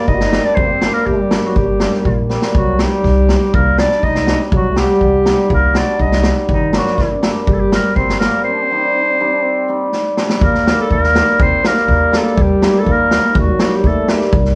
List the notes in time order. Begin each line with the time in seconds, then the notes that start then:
Already playing: G3
0.08 G1 D#4 D#5, kick
0.15 F#4
0.20 D#4, snare
0.32 G3 A#3 C4, snare
0.45 D4 D5
0.55 G1 C5, kick
0.60 C4
0.66 A#3
0.71 C4
0.81 G3 A#3 D4, snare
0.93 A#3 A#4
1.06 G1 G3 G4, kick
1.31 G3 A#3 D4, snare
1.45 F#3 F#4
1.56 G1 G3 G4, kick
1.80 G3 A#3 D4, snare
1.93 snare
2.05 A#1, kick
2.29 G3 A#3 C4, snare
2.42 snare
2.55 C2 F#3 F#4, kick
2.79 G3 C4 D#4 G4, snare
3.04 C2, kick, snare
3.28 G3 C4 D#4, snare
3.53 C2 A#3 A#4, kick
3.78 G3 C4 D4 D#4 D5, snare
3.91 snare
4.03 C2 D#4 D#5, kick
4.15 snare
4.27 G3 C4 D4, snare
4.52 C2 F#3 F#4, kick
4.70 A3
4.75 G3 C4 F#4 G4, snare
5.01 C2, kick
5.24 G3 C4 D#4, snare
5.50 C2 A#3, kick
5.54 A#4
5.74 G3 C4 D4 F#4 D5, snare
5.80 D#4
5.88 D4
5.98 C2 D#4 D#5, kick
6.06 D4
6.12 D#4, snare
6.22 G3 C4 D#4, snare
6.49 G1 D#3 D#4, kick
6.73 F#3 G3 A#3 D4, snare
6.78 F#4
6.86 snare
6.98 G1, kick, snare
7.23 G3 A#3 D4, snare
7.46 G1 G3 G4, kick
7.54 A4
7.60 G4
7.71 G3 A#3 C4 A#4, snare
7.96 G1 C4 C5, kick
8.09 snare
8.19 G3 A#3 C4 A#4, snare
8.44 C4 C5
8.52 D4
8.63 C4
8.69 G3 C4 D4 D#4
8.78 C4
8.86 D4
8.94 C4
9.01 D4
9.10 C4
9.19 G3 C4 D4 D#4
9.26 C4
9.34 D4
9.42 C4
9.68 G3 C4 D#4
9.93 snare
10.17 G3 C4 D4, snare
10.29 snare
10.41 D#2 A#3 A#4, kick
10.55 snare
10.67 G3 A#3 D#4, snare
10.81 A4
10.90 D#2 A#3 A#4, kick
11.04 snare
11.15 G3 A#3 D#4, snare
11.39 D#2 C4 C5, kick
11.64 G3 A#3 D#4 A#4, snare
11.77 snare
11.88 D#2, kick
12.11 G3 A#3 D4, snare
12.17 A4
12.37 D#2 G3, kick
12.42 G4
12.62 G3 A#3 D#4, snare
12.79 A4
12.86 D#2 A#3, kick
12.92 A#4
13.11 G3 A#3 D#4, snare
13.35 D#2 F#3, kick
13.39 F#4
13.59 G3 A#3 D#4, snare
13.76 G4
13.83 D#2 A3 A4, kick
14.08 G3 A#3 D#4 G4, snare
14.21 snare
14.32 C2, kick
14.45 snare